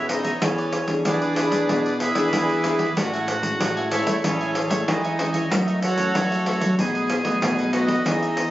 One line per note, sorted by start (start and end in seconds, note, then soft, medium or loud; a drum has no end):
0.00 0.32 B2 medium
0.00 0.39 B2 medium
0.08 0.28 B3 medium
0.08 0.29 C#4 soft
0.08 0.41 D#4 medium
0.08 0.24 E4 soft
0.08 0.24 G#4 soft
0.08 0.29 G#4 soft
0.08 0.24 C#5 soft
0.08 0.41 D#5 medium
0.08 0.22 E5 soft
0.08 pandeiro medium
0.24 0.41 G#4 medium
0.24 0.40 C#5 medium
0.24 0.39 E5 medium
0.24 pandeiro soft
0.42 1.02 E3 medium
0.42 0.96 E3 loud
0.42 0.85 B3 soft
0.42 1.02 C#4 medium
0.42 0.57 E4 soft
0.42 0.57 G#4 medium
0.42 0.85 G#4 medium
0.42 0.57 B4 soft
0.42 1.02 C#5 medium
0.42 0.57 D5 soft
0.42 pandeiro medium
0.58 0.72 G#4 medium
0.58 0.72 B4 medium
0.58 0.72 D5 medium
0.58 pandeiro soft
0.72 muted cavaquinho stroke soft
0.72 pandeiro medium
0.88 1.32 B3 medium
0.88 1.32 D4 medium
0.88 1.32 G#4 medium
0.88 pandeiro medium
1.05 1.66 B2 medium
1.05 1.46 E3 medium
1.05 1.98 D4 medium
1.05 1.20 E4 soft
1.05 1.20 G#4 soft
1.05 1.98 G#4 medium
1.05 1.21 B4 soft
1.05 1.98 B4 medium
1.05 1.20 D5 medium
1.05 1.98 D5 medium
1.05 pandeiro medium
1.21 1.36 G#4 medium
1.21 1.36 B4 medium
1.21 1.36 D5 medium
1.21 pandeiro soft
1.36 1.64 B3 medium
1.36 1.64 D4 medium
1.36 1.52 E4 medium
1.36 1.52 G#4 medium
1.36 1.64 G#4 medium
1.36 1.52 B4 medium
1.36 1.50 D5 medium
1.36 pandeiro medium
1.52 1.66 E3 medium
1.52 1.68 G#4 medium
1.52 1.68 B4 medium
1.52 1.67 D5 medium
1.52 pandeiro medium
1.69 2.10 B2 medium
1.69 2.30 E3 medium
1.69 2.12 B3 medium
1.69 2.12 D4 soft
1.69 1.84 E4 medium
1.69 2.12 G#4 medium
1.69 1.84 G#4 soft
1.69 1.85 B4 soft
1.69 1.84 D5 medium
1.69 pandeiro medium
1.86 2.00 G#4 medium
1.86 2.01 B4 medium
1.86 2.00 D5 medium
1.86 pandeiro soft
2.00 2.93 E4 medium
2.00 2.93 G#4 medium
2.00 2.93 B4 medium
2.00 2.93 E5 medium
2.00 muted cavaquinho stroke soft
2.00 pandeiro medium
2.15 2.30 E3 medium
2.15 2.59 B3 medium
2.15 2.59 D4 medium
2.15 2.59 G#4 medium
2.15 2.48 G#4 medium
2.15 2.47 B4 medium
2.15 2.47 D5 medium
2.15 pandeiro medium
2.33 2.93 B2 medium
2.33 2.87 E3 medium
2.33 pandeiro medium
2.49 2.64 G#4 medium
2.49 2.64 B4 medium
2.49 2.64 D5 medium
2.49 pandeiro soft
2.64 2.83 B3 soft
2.64 2.83 D4 soft
2.64 2.79 E4 soft
2.64 2.80 G#4 medium
2.64 2.84 G#4 medium
2.64 2.79 B4 soft
2.64 2.78 D5 soft
2.64 pandeiro medium
2.79 2.96 G#4 medium
2.79 2.95 B4 medium
2.79 2.95 D5 medium
2.79 pandeiro soft
2.97 3.57 A2 medium
2.97 3.51 A2 loud
2.97 3.39 G#3 soft
2.97 3.40 C#4 medium
2.97 3.40 E4 medium
2.97 3.89 F#4 medium
2.97 3.12 A4 medium
2.97 3.12 C#5 medium
2.97 3.12 E5 medium
2.97 3.89 F#5 medium
2.97 3.12 G#5 medium
2.97 pandeiro medium
3.13 3.28 C#5 soft
3.13 3.28 E5 medium
3.13 3.28 G#5 medium
3.13 pandeiro soft
3.28 muted cavaquinho stroke soft
3.28 pandeiro medium
3.43 3.86 G#3 medium
3.43 3.86 C#4 medium
3.43 3.87 E4 medium
3.43 pandeiro medium
3.60 4.01 A2 medium
3.60 4.21 E3 soft
3.60 3.75 A4 soft
3.60 3.75 C#5 soft
3.60 3.76 E5 soft
3.60 3.75 G#5 soft
3.60 pandeiro medium
3.77 3.90 C#5 soft
3.77 3.91 E5 medium
3.77 3.91 G#5 medium
3.77 pandeiro soft
3.91 4.19 G#3 medium
3.91 4.19 C#4 soft
3.91 4.19 E4 soft
3.91 4.23 E4 medium
3.91 4.06 A4 medium
3.91 4.23 A4 medium
3.91 4.07 C#5 medium
3.91 4.23 C#5 medium
3.91 4.23 E5 medium
3.91 4.07 E5 medium
3.91 4.06 G#5 medium
3.91 pandeiro medium
4.07 4.21 A3 medium
4.07 4.23 C#5 medium
4.07 4.23 E5 medium
4.07 4.22 G#5 medium
4.07 pandeiro medium
4.24 4.85 A2 medium
4.24 4.65 E3 loud
4.24 4.54 G#3 medium
4.24 4.54 C#4 medium
4.24 4.84 C#4 medium
4.24 4.54 E4 medium
4.24 4.84 G#4 medium
4.24 4.39 A4 soft
4.24 4.84 A4 medium
4.24 4.39 C#5 soft
4.24 4.84 C#5 medium
4.24 4.39 E5 soft
4.24 4.39 G#5 soft
4.24 pandeiro medium
4.40 4.54 C#5 medium
4.40 4.55 E5 medium
4.40 4.55 G#5 medium
4.40 pandeiro soft
4.55 pandeiro medium
4.69 5.14 G#3 medium
4.69 4.85 A3 medium
4.69 5.14 C#4 medium
4.69 5.14 E4 medium
4.69 5.02 C#5 medium
4.69 5.02 E5 medium
4.69 5.01 G#5 medium
4.69 pandeiro medium
4.88 5.48 E3 medium
4.88 5.42 E3 medium
4.88 5.80 D#4 medium
4.88 5.80 D#5 medium
4.88 pandeiro medium
5.04 5.17 C#5 medium
5.04 5.18 E5 medium
5.04 5.18 G#5 medium
5.04 pandeiro soft
5.17 5.46 G#3 soft
5.17 5.46 C#4 soft
5.17 5.47 E4 medium
5.17 5.33 A4 soft
5.17 5.34 C#5 soft
5.17 5.33 E5 soft
5.17 5.31 G#5 soft
5.17 pandeiro medium
5.33 5.50 C#5 medium
5.33 5.49 E5 medium
5.33 5.49 G#5 medium
5.33 pandeiro medium
5.50 6.12 F#2 medium
5.50 6.06 F#2 loud
5.50 5.82 E3 soft
5.50 5.82 A3 medium
5.50 5.82 C#4 medium
5.50 5.65 F#4 soft
5.50 5.66 A4 medium
5.50 5.66 C#5 medium
5.50 5.65 E5 medium
5.50 pandeiro medium
5.67 5.81 A4 soft
5.67 5.81 C#5 medium
5.67 5.81 E5 medium
5.67 pandeiro soft
5.81 6.75 F#4 medium
5.81 6.75 A4 medium
5.81 6.75 C#5 medium
5.81 6.75 F#5 medium
5.81 muted cavaquinho stroke soft
5.81 pandeiro medium
5.97 6.41 E3 medium
5.97 6.41 A3 medium
5.97 6.41 C#4 medium
5.97 pandeiro medium
6.14 6.56 F#2 medium
6.14 6.76 C#3 medium
6.14 6.29 F#4 soft
6.14 6.30 A4 soft
6.14 6.30 C#5 soft
6.14 6.29 E5 medium
6.14 pandeiro medium
6.31 6.45 A4 soft
6.31 6.45 C#5 medium
6.31 6.45 E5 medium
6.31 pandeiro soft
6.45 6.73 E3 soft
6.45 6.73 A3 medium
6.45 6.74 C#4 soft
6.45 6.61 F#4 medium
6.45 6.61 A4 medium
6.45 6.60 C#5 medium
6.45 6.59 E5 medium
6.45 pandeiro medium
6.60 6.76 F#3 medium
6.60 6.77 A4 medium
6.60 6.77 C#5 medium
6.60 6.76 E5 medium
6.60 pandeiro medium
6.78 7.39 B2 medium
6.78 7.20 B2 loud
6.78 7.08 F#3 medium
6.78 7.09 A3 medium
6.78 6.93 D#4 soft
6.78 7.09 D#4 medium
6.78 7.71 G#4 medium
6.78 6.93 A4 soft
6.78 6.94 B4 soft
6.78 6.93 D#5 medium
6.78 7.71 G#5 medium
6.78 pandeiro medium
6.94 7.08 A4 medium
6.94 7.08 B4 medium
6.94 7.08 D#5 medium
6.94 pandeiro soft
7.09 muted cavaquinho stroke soft
7.09 pandeiro medium
7.24 7.68 F#3 medium
7.24 7.69 A3 medium
7.24 7.39 B3 medium
7.24 7.69 D#4 medium
7.24 7.56 B4 medium
7.24 7.56 D#5 medium
7.24 pandeiro medium
7.42 8.03 F#2 medium
7.42 7.97 B2 loud
7.42 pandeiro medium
7.57 7.72 A4 medium
7.57 7.72 B4 medium
7.57 7.73 D#5 medium
7.57 pandeiro soft
7.72 7.93 F#3 soft
7.72 7.93 A3 soft
7.72 7.88 D#4 soft
7.72 7.93 D#4 medium
7.72 8.05 F#4 medium
7.72 7.88 A4 soft
7.72 7.87 B4 medium
7.72 8.05 B4 medium
7.72 7.86 D#5 medium
7.72 8.05 D#5 medium
7.72 8.05 F#5 medium
7.72 pandeiro medium
7.87 8.04 A4 medium
7.87 8.04 B4 medium
7.87 8.03 D#5 medium
7.87 pandeiro medium
8.05 8.51 E3 medium
8.05 8.51 E3 loud
8.05 8.36 B3 medium
8.05 8.36 C#4 medium
8.05 8.51 D#4 medium
8.05 8.20 E4 medium
8.05 8.21 G#4 medium
8.05 8.36 G#4 medium
8.05 8.21 C#5 medium
8.05 8.51 D#5 medium
8.05 8.20 E5 medium
8.05 pandeiro medium
8.22 8.35 G#4 medium
8.22 8.36 C#5 medium
8.22 8.36 E5 medium
8.22 pandeiro soft
8.36 muted cavaquinho stroke soft
8.36 pandeiro medium